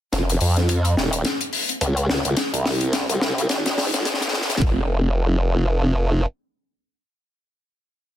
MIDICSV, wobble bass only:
0, 0, Header, 1, 2, 480
1, 0, Start_track
1, 0, Tempo, 560748
1, 112, Time_signature, 4, 2, 24, 8
1, 6992, End_track
2, 0, Start_track
2, 0, Title_t, "Wobble bass"
2, 0, Program_c, 0, 39
2, 111, Note_on_c, 0, 29, 94
2, 335, Note_off_c, 0, 29, 0
2, 351, Note_on_c, 0, 41, 93
2, 816, Note_off_c, 0, 41, 0
2, 830, Note_on_c, 0, 27, 95
2, 1055, Note_off_c, 0, 27, 0
2, 1551, Note_on_c, 0, 37, 94
2, 1775, Note_off_c, 0, 37, 0
2, 1789, Note_on_c, 0, 37, 97
2, 1906, Note_off_c, 0, 37, 0
2, 1926, Note_on_c, 0, 37, 98
2, 2014, Note_off_c, 0, 37, 0
2, 2167, Note_on_c, 0, 36, 91
2, 2626, Note_off_c, 0, 36, 0
2, 2648, Note_on_c, 0, 36, 100
2, 2975, Note_off_c, 0, 36, 0
2, 2991, Note_on_c, 0, 32, 99
2, 3347, Note_off_c, 0, 32, 0
2, 3367, Note_on_c, 0, 32, 98
2, 3935, Note_off_c, 0, 32, 0
2, 3952, Note_on_c, 0, 29, 97
2, 5358, Note_off_c, 0, 29, 0
2, 6992, End_track
0, 0, End_of_file